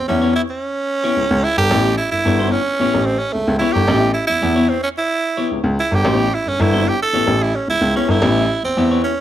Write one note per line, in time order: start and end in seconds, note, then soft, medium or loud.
0.08 0.30 E2 medium
0.08 0.21 B3 medium
0.08 0.33 C#4 medium
0.08 0.21 E4 medium
0.08 0.21 G4 medium
0.08 0.21 E5 medium
0.22 0.42 B3 medium
0.22 0.42 E4 medium
0.22 0.42 G4 medium
0.22 0.42 C#5 medium
0.36 0.42 E4 medium
0.50 1.45 C#4 medium
1.04 1.24 B3 medium
1.04 1.24 E4 medium
1.04 1.24 G4 medium
1.04 1.24 C#5 medium
1.17 1.22 C#2 soft
1.31 1.41 C#2 medium
1.43 1.57 E4 loud
1.57 1.68 G1 medium
1.57 1.96 G4 loud
1.71 1.92 A1 loud
1.71 1.92 B3 medium
1.71 1.92 E4 medium
1.71 1.92 G4 medium
1.71 1.92 C#5 medium
1.97 2.10 E4 medium
2.11 2.17 G1 soft
2.11 2.53 E4 loud
2.25 2.47 G1 medium
2.25 2.39 B3 medium
2.25 2.39 E4 medium
2.25 2.38 G4 medium
2.25 2.38 C#5 medium
2.39 2.60 B3 medium
2.39 2.60 E4 medium
2.39 2.60 G4 medium
2.39 2.59 C#5 medium
2.51 3.07 C#4 loud
2.80 2.85 A1 soft
2.80 3.00 B3 medium
2.80 3.00 E4 medium
2.80 3.00 G4 medium
2.80 3.01 C#5 medium
2.94 3.15 A1 medium
3.05 3.20 C4 loud
3.19 3.34 C#4 medium
3.32 3.40 C#2 soft
3.32 3.58 A3 medium
3.48 3.58 C#2 medium
3.59 3.81 B3 medium
3.59 3.74 E4 loud
3.59 3.81 E4 medium
3.59 3.82 G4 loud
3.59 3.81 C#5 loud
3.73 3.86 G1 medium
3.73 4.13 G4 loud
3.88 4.10 A1 loud
3.88 4.08 B3 medium
3.88 4.08 E4 medium
3.88 4.08 G4 medium
3.88 4.08 E5 loud
4.14 4.26 E4 medium
4.27 4.35 E2 soft
4.27 4.70 E4 loud
4.42 4.64 E2 medium
4.42 4.56 B3 medium
4.42 4.55 E4 medium
4.42 4.55 G4 medium
4.42 4.55 E5 medium
4.56 4.77 B3 medium
4.56 4.77 E4 medium
4.56 4.77 G4 medium
4.56 4.76 C#5 medium
4.69 4.82 C4 medium
4.83 4.89 C#4 medium
4.98 5.48 E4 loud
5.37 5.58 B3 medium
5.37 5.58 E4 medium
5.37 5.58 G4 medium
5.37 5.58 C#5 medium
5.51 5.57 C#2 soft
5.64 5.75 C#2 medium
5.80 5.96 E4 medium
5.91 6.02 G1 medium
5.91 6.36 G4 loud
6.05 6.26 A1 loud
6.05 6.26 B3 medium
6.05 6.26 E4 medium
6.05 6.26 G4 medium
6.05 6.26 C#5 medium
6.34 6.49 E4 medium
6.46 6.51 G1 soft
6.46 6.62 C#4 medium
6.59 6.81 G1 loud
6.59 6.73 B3 medium
6.59 6.73 E4 medium
6.59 6.90 E4 loud
6.59 6.72 G4 medium
6.59 6.72 C#5 medium
6.73 6.94 B3 medium
6.73 6.94 E4 medium
6.73 6.94 G4 medium
6.73 6.94 C#5 medium
6.88 7.01 G4 medium
7.02 7.44 A4 loud
7.13 7.20 A1 soft
7.13 7.34 B3 medium
7.13 7.34 E4 medium
7.13 7.34 G4 medium
7.13 7.34 C#5 medium
7.27 7.49 A1 medium
7.42 7.57 E4 medium
7.55 7.69 C#4 medium
7.68 7.73 C#2 soft
7.68 7.94 E4 loud
7.81 7.92 C#2 medium
7.95 8.16 B3 medium
7.95 8.11 C#4 medium
7.95 8.16 E4 medium
7.95 8.16 G4 medium
7.95 8.16 C#5 medium
8.08 8.19 G1 medium
8.08 8.64 E4 loud
8.22 8.44 A1 loud
8.22 8.43 B3 medium
8.22 8.43 E4 medium
8.22 8.43 G4 medium
8.22 8.43 E5 medium
8.63 8.69 E2 soft
8.63 9.02 C4 medium
8.77 8.99 E2 medium
8.77 8.91 B3 medium
8.77 8.91 E4 medium
8.77 8.90 G4 medium
8.77 8.91 E5 medium
8.91 9.12 B3 medium
8.91 9.12 E4 medium
8.91 9.11 G4 medium
8.91 9.11 C#5 medium
9.04 9.21 C#4 medium